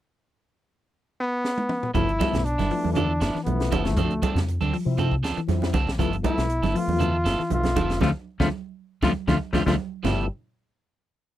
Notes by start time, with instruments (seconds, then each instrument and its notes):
1.20 trombone B3
1.45 snare
1.58 high tom
1.69 mid tom
1.83 floor tom
1.94 fingered electric bass G1, clean electric guitar F3 B3 A4, tonewheel organ F3 A3 B3 E4, trombone E4, muted clean electric guitar stroke, kick, closed hi-hat, high conga, low conga
2.09 closed hi-hat
2.19 clean electric guitar F3 G3 B3 E4 A4, tonewheel organ F3 A3 B3 E4, kick, snare, closed hi-hat, high conga
2.33 fingered electric bass B1, snare, closed hi-hat, low conga
2.45 trombone D4, closed hi-hat, high conga
2.58 fingered electric bass G1, clean electric guitar B3 E4, snare, closed hi-hat, high conga
2.70 tonewheel organ F3 A3 B3 E4, clean electric guitar F3, open hi-hat
2.84 fingered electric bass E2, high conga
2.94 clean electric guitar D3 F3 B3 E4 A4, trombone D4, closed hi-hat, high conga, low conga
3.20 fingered electric bass G1, clean electric guitar F3 B3 E4, muted clean electric guitar stroke, snare, closed hi-hat
3.35 clean electric guitar E3, snare
3.44 fingered electric bass B1, tonewheel organ F3 A3 B3 E4, trombone B3, closed hi-hat, high conga
3.60 snare, closed hi-hat
3.71 fingered electric bass F1, clean electric guitar D3 F3 B3 E4 A4, kick, closed hi-hat, high conga
3.85 trombone A3, snare, closed hi-hat
3.97 fingered electric bass D2, clean electric guitar F3 C4 D4 A4, kick, closed hi-hat, high conga, low conga
4.11 closed hi-hat
4.22 clean electric guitar F3 G3 C4 D4 A4, kick, closed hi-hat, high conga
4.35 fingered electric bass F2, snare, closed hi-hat, low conga
4.48 closed hi-hat, high conga
4.61 fingered electric bass D2, clean electric guitar C4 D4 A4, closed hi-hat, high conga
4.74 clean electric guitar F3, open hi-hat
4.85 fingered electric bass C3, tonewheel organ F3 C4 E4
4.98 clean electric guitar F3 C4 A4, muted clean electric guitar stroke, closed hi-hat, high conga, low conga
5.12 kick
5.23 fingered electric bass D2, clean electric guitar F3 C4 D4 A4, snare, closed hi-hat
5.37 clean electric guitar E3, muted fingered electric bass stroke, closed hi-hat
5.48 fingered electric bass F2, tonewheel organ F3 C4 E4, snare, closed hi-hat, high conga
5.62 snare, high conga
5.73 fingered electric bass C2, clean electric guitar D3 C4 D4 A4, muted clean electric guitar stroke, kick, closed hi-hat, high conga
5.87 kick, snare
5.98 fingered electric bass G1, tonewheel organ F3 A3 B3 E4, clean electric guitar F3 B3 E4 A4, kick, closed hi-hat, high conga, low conga
6.13 closed hi-hat
6.23 tonewheel organ F3 A3 B3 E4, clean electric guitar F3 G3 E4 A4, trombone E4, kick, closed hi-hat, high conga
6.38 fingered electric bass B1, snare, closed hi-hat
6.50 closed hi-hat, high conga
6.63 fingered electric bass G1, clean electric guitar B3 E4 A4, snare, closed hi-hat, high conga
6.74 tonewheel organ F3 A3 B3 F4, clean electric guitar F3, trombone F4, open hi-hat
6.88 fingered electric bass E2, high conga
6.99 clean electric guitar D3 F3 B3 E4 A4, closed hi-hat, high conga, low conga
7.24 fingered electric bass G1, clean electric guitar F3 B3 E4 A4, snare, closed hi-hat
7.39 clean electric guitar E3, muted fingered electric bass stroke, snare
7.50 fingered electric bass B1, tonewheel organ F3 A3 B3 E5, trombone F4, closed hi-hat, high conga
7.63 snare, closed hi-hat, high conga
7.76 fingered electric bass F1, clean electric guitar D3 F3 B3 E4 A4, kick, closed hi-hat, high conga
7.90 snare, closed hi-hat
8.01 fingered electric bass D2, clean electric guitar D3 F3 A3 C4 D4 F4, tonewheel organ A3 C4 D4, trombone F4, kick, snare, high conga
8.40 fingered electric bass D2, clean electric guitar D3 F3 A3 C4 D4 F4, tonewheel organ A3 C4 D4, trombone F4, kick, snare, high conga
9.02 fingered electric bass D2, clean electric guitar D3 F3 A3 C4 D4 F4, tonewheel organ A3 C4 D4, trombone F4, kick, snare, high conga
9.28 fingered electric bass D2, clean electric guitar D3 F3 A3 C4 D4 F4, tonewheel organ A3 C4 D4, trombone F4, kick, snare, high conga
9.53 fingered electric bass D2, clean electric guitar D3 F3 A3 C4 D4 F4, tonewheel organ A3 C4 D4, trombone F4, kick, snare, high conga
9.66 fingered electric bass D2, clean electric guitar D3 F3 A3 C4 D4 F4, tonewheel organ A3 C4 D4, trombone F4, kick, snare, high conga
10.03 fingered electric bass G1, clean electric guitar G2 F3 B3 E4 A4, tonewheel organ F3 A3 B3 E4, trombone G3, snare, floor tom, crash, low conga